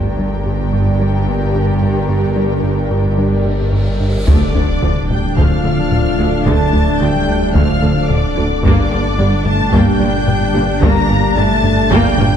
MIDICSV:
0, 0, Header, 1, 14, 480
1, 0, Start_track
1, 0, Key_signature, -1, "minor"
1, 0, Tempo, 545455
1, 1845, Time_signature, 4, 2, 24, 8
1, 10883, End_track
2, 0, Start_track
2, 0, Title_t, "Violin section"
2, 0, Program_c, 0, 48
2, 3770, Note_on_c, 0, 86, 79
2, 4452, Note_off_c, 0, 86, 0
2, 4483, Note_on_c, 0, 91, 73
2, 4718, Note_on_c, 0, 89, 89
2, 4724, Note_off_c, 0, 91, 0
2, 5682, Note_off_c, 0, 89, 0
2, 5683, Note_on_c, 0, 93, 91
2, 6154, Note_off_c, 0, 93, 0
2, 6159, Note_on_c, 0, 91, 99
2, 6641, Note_on_c, 0, 89, 98
2, 6642, Note_off_c, 0, 91, 0
2, 7114, Note_off_c, 0, 89, 0
2, 7117, Note_on_c, 0, 86, 94
2, 7579, Note_off_c, 0, 86, 0
2, 7590, Note_on_c, 0, 86, 96
2, 8303, Note_off_c, 0, 86, 0
2, 8321, Note_on_c, 0, 93, 88
2, 8562, Note_on_c, 0, 91, 107
2, 8563, Note_off_c, 0, 93, 0
2, 9524, Note_off_c, 0, 91, 0
2, 9524, Note_on_c, 0, 94, 112
2, 10001, Note_on_c, 0, 93, 127
2, 10005, Note_off_c, 0, 94, 0
2, 10473, Note_off_c, 0, 93, 0
2, 10488, Note_on_c, 0, 91, 127
2, 10883, Note_off_c, 0, 91, 0
2, 10883, End_track
3, 0, Start_track
3, 0, Title_t, "Violin section"
3, 0, Program_c, 1, 48
3, 0, Note_on_c, 1, 70, 51
3, 0, Note_on_c, 1, 79, 58
3, 3552, Note_off_c, 1, 70, 0
3, 3553, Note_off_c, 1, 79, 0
3, 3767, Note_on_c, 1, 74, 75
3, 4451, Note_off_c, 1, 74, 0
3, 4490, Note_on_c, 1, 79, 67
3, 4727, Note_off_c, 1, 79, 0
3, 4735, Note_on_c, 1, 77, 70
3, 5671, Note_off_c, 1, 77, 0
3, 5697, Note_on_c, 1, 81, 88
3, 6171, Note_off_c, 1, 81, 0
3, 6180, Note_on_c, 1, 79, 77
3, 6643, Note_off_c, 1, 79, 0
3, 6653, Note_on_c, 1, 77, 75
3, 7120, Note_off_c, 1, 77, 0
3, 7135, Note_on_c, 1, 74, 76
3, 7601, Note_off_c, 1, 74, 0
3, 7611, Note_on_c, 1, 74, 81
3, 8314, Note_off_c, 1, 74, 0
3, 8327, Note_on_c, 1, 81, 88
3, 8561, Note_off_c, 1, 81, 0
3, 8570, Note_on_c, 1, 79, 77
3, 9523, Note_on_c, 1, 82, 96
3, 9528, Note_off_c, 1, 79, 0
3, 9994, Note_off_c, 1, 82, 0
3, 10003, Note_on_c, 1, 81, 102
3, 10484, Note_off_c, 1, 81, 0
3, 10487, Note_on_c, 1, 79, 99
3, 10883, Note_off_c, 1, 79, 0
3, 10883, End_track
4, 0, Start_track
4, 0, Title_t, "Ambient pad"
4, 0, Program_c, 2, 92
4, 0, Note_on_c, 2, 55, 58
4, 0, Note_on_c, 2, 67, 60
4, 0, Note_on_c, 2, 70, 58
4, 0, Note_on_c, 2, 74, 58
4, 3735, Note_off_c, 2, 74, 0
4, 3763, Note_on_c, 2, 57, 75
4, 3764, Note_on_c, 2, 69, 73
4, 3766, Note_on_c, 2, 62, 80
4, 3768, Note_off_c, 2, 67, 0
4, 3771, Note_off_c, 2, 55, 0
4, 3771, Note_off_c, 2, 70, 0
4, 3771, Note_on_c, 2, 74, 78
4, 7569, Note_off_c, 2, 57, 0
4, 7569, Note_off_c, 2, 69, 0
4, 7570, Note_off_c, 2, 62, 0
4, 7573, Note_off_c, 2, 74, 0
4, 7594, Note_on_c, 2, 62, 77
4, 7596, Note_on_c, 2, 46, 78
4, 7598, Note_on_c, 2, 74, 74
4, 7599, Note_on_c, 2, 67, 80
4, 10883, Note_off_c, 2, 46, 0
4, 10883, Note_off_c, 2, 62, 0
4, 10883, Note_off_c, 2, 67, 0
4, 10883, Note_off_c, 2, 74, 0
4, 10883, End_track
5, 0, Start_track
5, 0, Title_t, "Synth arpeggio sound"
5, 0, Program_c, 3, 84
5, 164, Note_on_c, 3, 62, 52
5, 308, Note_off_c, 3, 62, 0
5, 400, Note_on_c, 3, 67, 57
5, 546, Note_off_c, 3, 67, 0
5, 640, Note_on_c, 3, 55, 85
5, 785, Note_off_c, 3, 55, 0
5, 877, Note_on_c, 3, 62, 63
5, 1023, Note_off_c, 3, 62, 0
5, 1119, Note_on_c, 3, 58, 54
5, 1265, Note_off_c, 3, 58, 0
5, 1355, Note_on_c, 3, 55, 72
5, 1502, Note_off_c, 3, 55, 0
5, 1837, Note_on_c, 3, 55, 70
5, 1983, Note_off_c, 3, 55, 0
5, 2075, Note_on_c, 3, 62, 54
5, 2222, Note_off_c, 3, 62, 0
5, 2317, Note_on_c, 3, 67, 54
5, 2463, Note_off_c, 3, 67, 0
5, 2557, Note_on_c, 3, 55, 82
5, 2704, Note_off_c, 3, 55, 0
5, 2800, Note_on_c, 3, 62, 59
5, 2946, Note_off_c, 3, 62, 0
5, 3039, Note_on_c, 3, 58, 48
5, 3185, Note_off_c, 3, 58, 0
5, 3277, Note_on_c, 3, 55, 77
5, 3424, Note_off_c, 3, 55, 0
5, 3759, Note_on_c, 3, 50, 89
5, 3905, Note_off_c, 3, 50, 0
5, 4003, Note_on_c, 3, 62, 69
5, 4148, Note_off_c, 3, 62, 0
5, 4241, Note_on_c, 3, 57, 80
5, 4386, Note_off_c, 3, 57, 0
5, 4723, Note_on_c, 3, 50, 109
5, 4868, Note_off_c, 3, 50, 0
5, 4961, Note_on_c, 3, 57, 68
5, 5106, Note_off_c, 3, 57, 0
5, 5445, Note_on_c, 3, 62, 75
5, 5589, Note_off_c, 3, 62, 0
5, 5683, Note_on_c, 3, 50, 97
5, 5828, Note_off_c, 3, 50, 0
5, 5919, Note_on_c, 3, 62, 70
5, 6065, Note_off_c, 3, 62, 0
5, 6162, Note_on_c, 3, 57, 80
5, 6307, Note_off_c, 3, 57, 0
5, 6642, Note_on_c, 3, 50, 101
5, 6787, Note_off_c, 3, 50, 0
5, 6880, Note_on_c, 3, 57, 73
5, 7025, Note_off_c, 3, 57, 0
5, 7353, Note_on_c, 3, 62, 69
5, 7501, Note_off_c, 3, 62, 0
5, 7597, Note_on_c, 3, 55, 92
5, 7744, Note_off_c, 3, 55, 0
5, 7841, Note_on_c, 3, 67, 73
5, 7986, Note_off_c, 3, 67, 0
5, 8082, Note_on_c, 3, 62, 78
5, 8227, Note_off_c, 3, 62, 0
5, 8562, Note_on_c, 3, 55, 121
5, 8707, Note_off_c, 3, 55, 0
5, 8801, Note_on_c, 3, 62, 70
5, 8946, Note_off_c, 3, 62, 0
5, 9277, Note_on_c, 3, 67, 73
5, 9423, Note_off_c, 3, 67, 0
5, 9520, Note_on_c, 3, 55, 98
5, 9666, Note_off_c, 3, 55, 0
5, 9762, Note_on_c, 3, 67, 77
5, 9907, Note_off_c, 3, 67, 0
5, 10006, Note_on_c, 3, 62, 79
5, 10150, Note_off_c, 3, 62, 0
5, 10480, Note_on_c, 3, 55, 121
5, 10626, Note_off_c, 3, 55, 0
5, 10725, Note_on_c, 3, 62, 77
5, 10869, Note_off_c, 3, 62, 0
5, 10883, End_track
6, 0, Start_track
6, 0, Title_t, "Viola section"
6, 0, Program_c, 4, 48
6, 0, Note_on_c, 4, 62, 53
6, 0, Note_on_c, 4, 67, 57
6, 3553, Note_off_c, 4, 67, 0
6, 3554, Note_off_c, 4, 62, 0
6, 3765, Note_on_c, 4, 62, 63
6, 3767, Note_on_c, 4, 57, 83
6, 3989, Note_off_c, 4, 57, 0
6, 4001, Note_on_c, 4, 57, 47
6, 4072, Note_off_c, 4, 57, 0
6, 4241, Note_on_c, 4, 53, 52
6, 4311, Note_off_c, 4, 53, 0
6, 4719, Note_on_c, 4, 57, 67
6, 4945, Note_off_c, 4, 57, 0
6, 4962, Note_on_c, 4, 57, 55
6, 5032, Note_off_c, 4, 57, 0
6, 5440, Note_on_c, 4, 57, 65
6, 5510, Note_off_c, 4, 57, 0
6, 5686, Note_on_c, 4, 57, 75
6, 5909, Note_off_c, 4, 57, 0
6, 5923, Note_on_c, 4, 57, 51
6, 5994, Note_off_c, 4, 57, 0
6, 6168, Note_on_c, 4, 53, 55
6, 6238, Note_off_c, 4, 53, 0
6, 6656, Note_on_c, 4, 57, 72
6, 6874, Note_off_c, 4, 57, 0
6, 6888, Note_on_c, 4, 57, 68
6, 6958, Note_off_c, 4, 57, 0
6, 7370, Note_on_c, 4, 57, 60
6, 7440, Note_off_c, 4, 57, 0
6, 7570, Note_off_c, 4, 62, 0
6, 7606, Note_on_c, 4, 62, 73
6, 7609, Note_on_c, 4, 58, 85
6, 7830, Note_off_c, 4, 58, 0
6, 7846, Note_on_c, 4, 58, 49
6, 7916, Note_off_c, 4, 58, 0
6, 8090, Note_on_c, 4, 55, 65
6, 8160, Note_off_c, 4, 55, 0
6, 8572, Note_on_c, 4, 58, 76
6, 8792, Note_off_c, 4, 58, 0
6, 8806, Note_on_c, 4, 58, 69
6, 8877, Note_off_c, 4, 58, 0
6, 9280, Note_on_c, 4, 58, 76
6, 9350, Note_off_c, 4, 58, 0
6, 9522, Note_on_c, 4, 58, 85
6, 9747, Note_off_c, 4, 58, 0
6, 9765, Note_on_c, 4, 58, 64
6, 9836, Note_off_c, 4, 58, 0
6, 10006, Note_on_c, 4, 55, 67
6, 10076, Note_off_c, 4, 55, 0
6, 10482, Note_on_c, 4, 58, 106
6, 10707, Note_off_c, 4, 58, 0
6, 10721, Note_on_c, 4, 58, 83
6, 10792, Note_off_c, 4, 58, 0
6, 10883, Note_off_c, 4, 62, 0
6, 10883, End_track
7, 0, Start_track
7, 0, Title_t, "French horn section"
7, 0, Program_c, 5, 60
7, 3761, Note_on_c, 5, 50, 73
7, 4448, Note_off_c, 5, 50, 0
7, 4491, Note_on_c, 5, 55, 70
7, 4725, Note_on_c, 5, 53, 73
7, 4728, Note_off_c, 5, 55, 0
7, 5685, Note_off_c, 5, 53, 0
7, 5685, Note_on_c, 5, 57, 78
7, 6155, Note_off_c, 5, 57, 0
7, 6165, Note_on_c, 5, 55, 78
7, 6628, Note_on_c, 5, 53, 80
7, 6645, Note_off_c, 5, 55, 0
7, 7116, Note_off_c, 5, 53, 0
7, 7120, Note_on_c, 5, 50, 82
7, 7589, Note_off_c, 5, 50, 0
7, 7599, Note_on_c, 5, 50, 90
7, 8308, Note_off_c, 5, 50, 0
7, 8315, Note_on_c, 5, 57, 80
7, 8555, Note_on_c, 5, 55, 84
7, 8560, Note_off_c, 5, 57, 0
7, 9376, Note_off_c, 5, 55, 0
7, 9525, Note_on_c, 5, 58, 98
7, 9996, Note_off_c, 5, 58, 0
7, 9999, Note_on_c, 5, 57, 106
7, 10482, Note_off_c, 5, 57, 0
7, 10484, Note_on_c, 5, 55, 94
7, 10883, Note_off_c, 5, 55, 0
7, 10883, End_track
8, 0, Start_track
8, 0, Title_t, "Analog synth bass"
8, 0, Program_c, 6, 38
8, 166, Note_on_c, 6, 55, 59
8, 310, Note_off_c, 6, 55, 0
8, 407, Note_on_c, 6, 43, 52
8, 551, Note_off_c, 6, 43, 0
8, 645, Note_on_c, 6, 43, 80
8, 789, Note_off_c, 6, 43, 0
8, 891, Note_on_c, 6, 55, 50
8, 1033, Note_off_c, 6, 55, 0
8, 1128, Note_on_c, 6, 43, 52
8, 1271, Note_off_c, 6, 43, 0
8, 1365, Note_on_c, 6, 43, 75
8, 1509, Note_off_c, 6, 43, 0
8, 1604, Note_on_c, 6, 43, 57
8, 1748, Note_off_c, 6, 43, 0
8, 1836, Note_on_c, 6, 43, 69
8, 1983, Note_off_c, 6, 43, 0
8, 2080, Note_on_c, 6, 55, 53
8, 2225, Note_off_c, 6, 55, 0
8, 2317, Note_on_c, 6, 43, 53
8, 2464, Note_off_c, 6, 43, 0
8, 2557, Note_on_c, 6, 43, 80
8, 2704, Note_off_c, 6, 43, 0
8, 2799, Note_on_c, 6, 55, 49
8, 2945, Note_off_c, 6, 55, 0
8, 3039, Note_on_c, 6, 43, 50
8, 3185, Note_off_c, 6, 43, 0
8, 3280, Note_on_c, 6, 43, 68
8, 3426, Note_off_c, 6, 43, 0
8, 3525, Note_on_c, 6, 43, 55
8, 3669, Note_off_c, 6, 43, 0
8, 3765, Note_on_c, 6, 38, 101
8, 3909, Note_off_c, 6, 38, 0
8, 4007, Note_on_c, 6, 38, 73
8, 4151, Note_off_c, 6, 38, 0
8, 4245, Note_on_c, 6, 50, 63
8, 4389, Note_off_c, 6, 50, 0
8, 4489, Note_on_c, 6, 38, 74
8, 4632, Note_off_c, 6, 38, 0
8, 4731, Note_on_c, 6, 38, 87
8, 4873, Note_off_c, 6, 38, 0
8, 4972, Note_on_c, 6, 50, 62
8, 5114, Note_off_c, 6, 50, 0
8, 5210, Note_on_c, 6, 38, 68
8, 5352, Note_off_c, 6, 38, 0
8, 5452, Note_on_c, 6, 38, 73
8, 5594, Note_off_c, 6, 38, 0
8, 5684, Note_on_c, 6, 38, 97
8, 5828, Note_off_c, 6, 38, 0
8, 5928, Note_on_c, 6, 38, 70
8, 6071, Note_off_c, 6, 38, 0
8, 6166, Note_on_c, 6, 50, 65
8, 6310, Note_off_c, 6, 50, 0
8, 6407, Note_on_c, 6, 38, 73
8, 6551, Note_off_c, 6, 38, 0
8, 6644, Note_on_c, 6, 38, 96
8, 6789, Note_off_c, 6, 38, 0
8, 6886, Note_on_c, 6, 50, 75
8, 7030, Note_off_c, 6, 50, 0
8, 7125, Note_on_c, 6, 38, 72
8, 7269, Note_off_c, 6, 38, 0
8, 7368, Note_on_c, 6, 38, 73
8, 7511, Note_off_c, 6, 38, 0
8, 7603, Note_on_c, 6, 43, 107
8, 7748, Note_off_c, 6, 43, 0
8, 7846, Note_on_c, 6, 43, 76
8, 7990, Note_off_c, 6, 43, 0
8, 8082, Note_on_c, 6, 55, 70
8, 8227, Note_off_c, 6, 55, 0
8, 8320, Note_on_c, 6, 43, 76
8, 8465, Note_off_c, 6, 43, 0
8, 8555, Note_on_c, 6, 43, 101
8, 8702, Note_off_c, 6, 43, 0
8, 8797, Note_on_c, 6, 55, 71
8, 8943, Note_off_c, 6, 55, 0
8, 9036, Note_on_c, 6, 43, 76
8, 9183, Note_off_c, 6, 43, 0
8, 9280, Note_on_c, 6, 43, 74
8, 9426, Note_off_c, 6, 43, 0
8, 9527, Note_on_c, 6, 43, 102
8, 9671, Note_off_c, 6, 43, 0
8, 9764, Note_on_c, 6, 43, 70
8, 9908, Note_off_c, 6, 43, 0
8, 10004, Note_on_c, 6, 55, 72
8, 10148, Note_off_c, 6, 55, 0
8, 10242, Note_on_c, 6, 43, 81
8, 10387, Note_off_c, 6, 43, 0
8, 10482, Note_on_c, 6, 43, 106
8, 10627, Note_off_c, 6, 43, 0
8, 10725, Note_on_c, 6, 55, 73
8, 10869, Note_off_c, 6, 55, 0
8, 10883, End_track
9, 0, Start_track
9, 0, Title_t, "Cello section"
9, 0, Program_c, 7, 48
9, 0, Note_on_c, 7, 43, 64
9, 3590, Note_off_c, 7, 43, 0
9, 3761, Note_on_c, 7, 38, 79
9, 3832, Note_off_c, 7, 38, 0
9, 4005, Note_on_c, 7, 38, 51
9, 4075, Note_off_c, 7, 38, 0
9, 4245, Note_on_c, 7, 38, 56
9, 4315, Note_off_c, 7, 38, 0
9, 4731, Note_on_c, 7, 38, 72
9, 4802, Note_off_c, 7, 38, 0
9, 4966, Note_on_c, 7, 38, 51
9, 5036, Note_off_c, 7, 38, 0
9, 5444, Note_on_c, 7, 38, 56
9, 5514, Note_off_c, 7, 38, 0
9, 5688, Note_on_c, 7, 38, 90
9, 5758, Note_off_c, 7, 38, 0
9, 5927, Note_on_c, 7, 38, 52
9, 5998, Note_off_c, 7, 38, 0
9, 6166, Note_on_c, 7, 38, 57
9, 6236, Note_off_c, 7, 38, 0
9, 6643, Note_on_c, 7, 38, 82
9, 6713, Note_off_c, 7, 38, 0
9, 6886, Note_on_c, 7, 38, 54
9, 6957, Note_off_c, 7, 38, 0
9, 7367, Note_on_c, 7, 38, 58
9, 7437, Note_off_c, 7, 38, 0
9, 7605, Note_on_c, 7, 43, 88
9, 7676, Note_off_c, 7, 43, 0
9, 7841, Note_on_c, 7, 43, 56
9, 7912, Note_off_c, 7, 43, 0
9, 8083, Note_on_c, 7, 43, 65
9, 8153, Note_off_c, 7, 43, 0
9, 8561, Note_on_c, 7, 43, 92
9, 8631, Note_off_c, 7, 43, 0
9, 8807, Note_on_c, 7, 43, 63
9, 8878, Note_off_c, 7, 43, 0
9, 9287, Note_on_c, 7, 43, 66
9, 9357, Note_off_c, 7, 43, 0
9, 9520, Note_on_c, 7, 43, 104
9, 9591, Note_off_c, 7, 43, 0
9, 9764, Note_on_c, 7, 43, 73
9, 9834, Note_off_c, 7, 43, 0
9, 10004, Note_on_c, 7, 43, 72
9, 10075, Note_off_c, 7, 43, 0
9, 10478, Note_on_c, 7, 43, 104
9, 10548, Note_off_c, 7, 43, 0
9, 10719, Note_on_c, 7, 43, 74
9, 10789, Note_off_c, 7, 43, 0
9, 10883, End_track
10, 0, Start_track
10, 0, Title_t, "Double bass section"
10, 0, Program_c, 8, 48
10, 0, Note_on_c, 8, 31, 56
10, 3589, Note_off_c, 8, 31, 0
10, 3764, Note_on_c, 8, 38, 67
10, 3834, Note_off_c, 8, 38, 0
10, 3999, Note_on_c, 8, 38, 57
10, 4069, Note_off_c, 8, 38, 0
10, 4241, Note_on_c, 8, 38, 52
10, 4312, Note_off_c, 8, 38, 0
10, 4718, Note_on_c, 8, 38, 79
10, 4789, Note_off_c, 8, 38, 0
10, 4962, Note_on_c, 8, 38, 56
10, 5032, Note_off_c, 8, 38, 0
10, 5444, Note_on_c, 8, 38, 54
10, 5515, Note_off_c, 8, 38, 0
10, 5682, Note_on_c, 8, 38, 79
10, 5752, Note_off_c, 8, 38, 0
10, 5924, Note_on_c, 8, 38, 59
10, 5995, Note_off_c, 8, 38, 0
10, 6163, Note_on_c, 8, 38, 57
10, 6233, Note_off_c, 8, 38, 0
10, 6646, Note_on_c, 8, 38, 80
10, 6716, Note_off_c, 8, 38, 0
10, 6883, Note_on_c, 8, 38, 56
10, 6953, Note_off_c, 8, 38, 0
10, 7365, Note_on_c, 8, 38, 65
10, 7435, Note_off_c, 8, 38, 0
10, 7597, Note_on_c, 8, 31, 79
10, 7668, Note_off_c, 8, 31, 0
10, 7842, Note_on_c, 8, 31, 61
10, 7913, Note_off_c, 8, 31, 0
10, 8081, Note_on_c, 8, 31, 64
10, 8151, Note_off_c, 8, 31, 0
10, 8562, Note_on_c, 8, 31, 93
10, 8632, Note_off_c, 8, 31, 0
10, 8804, Note_on_c, 8, 31, 62
10, 8875, Note_off_c, 8, 31, 0
10, 9280, Note_on_c, 8, 31, 69
10, 9351, Note_off_c, 8, 31, 0
10, 9520, Note_on_c, 8, 31, 95
10, 9590, Note_off_c, 8, 31, 0
10, 9765, Note_on_c, 8, 31, 73
10, 9835, Note_off_c, 8, 31, 0
10, 10001, Note_on_c, 8, 31, 73
10, 10072, Note_off_c, 8, 31, 0
10, 10481, Note_on_c, 8, 31, 101
10, 10551, Note_off_c, 8, 31, 0
10, 10718, Note_on_c, 8, 31, 70
10, 10788, Note_off_c, 8, 31, 0
10, 10883, End_track
11, 0, Start_track
11, 0, Title_t, "Detuned saw bass"
11, 0, Program_c, 10, 39
11, 0, Note_on_c, 10, 31, 62
11, 3755, Note_off_c, 10, 31, 0
11, 3760, Note_on_c, 10, 26, 82
11, 7600, Note_on_c, 10, 31, 82
11, 7613, Note_off_c, 10, 26, 0
11, 10883, Note_off_c, 10, 31, 0
11, 10883, End_track
12, 0, Start_track
12, 0, Title_t, "Cymbal swell"
12, 0, Program_c, 11, 119
12, 1840, Note_on_c, 11, 60, 51
12, 3763, Note_off_c, 11, 60, 0
12, 10883, End_track
13, 0, Start_track
13, 0, Title_t, "Impact"
13, 0, Program_c, 12, 103
13, 3764, Note_on_c, 12, 60, 73
13, 5684, Note_off_c, 12, 60, 0
13, 10883, End_track
14, 0, Start_track
14, 0, Title_t, "Taiko and cinematic ensemble drums"
14, 3765, Note_on_c, 9, 41, 98
14, 3853, Note_off_c, 9, 41, 0
14, 4488, Note_on_c, 9, 45, 54
14, 4576, Note_off_c, 9, 45, 0
14, 4726, Note_on_c, 9, 41, 86
14, 4814, Note_off_c, 9, 41, 0
14, 5206, Note_on_c, 9, 45, 62
14, 5294, Note_off_c, 9, 45, 0
14, 5688, Note_on_c, 9, 41, 100
14, 5776, Note_off_c, 9, 41, 0
14, 6646, Note_on_c, 9, 41, 87
14, 6734, Note_off_c, 9, 41, 0
14, 7125, Note_on_c, 9, 45, 66
14, 7213, Note_off_c, 9, 45, 0
14, 7601, Note_on_c, 9, 41, 104
14, 7689, Note_off_c, 9, 41, 0
14, 8324, Note_on_c, 9, 45, 53
14, 8412, Note_off_c, 9, 45, 0
14, 8564, Note_on_c, 9, 41, 89
14, 8652, Note_off_c, 9, 41, 0
14, 9045, Note_on_c, 9, 45, 70
14, 9133, Note_off_c, 9, 45, 0
14, 9526, Note_on_c, 9, 41, 101
14, 9614, Note_off_c, 9, 41, 0
14, 10242, Note_on_c, 9, 45, 55
14, 10330, Note_off_c, 9, 45, 0
14, 10484, Note_on_c, 9, 41, 89
14, 10572, Note_off_c, 9, 41, 0
14, 10722, Note_on_c, 9, 45, 103
14, 10810, Note_off_c, 9, 45, 0
14, 10883, End_track
0, 0, End_of_file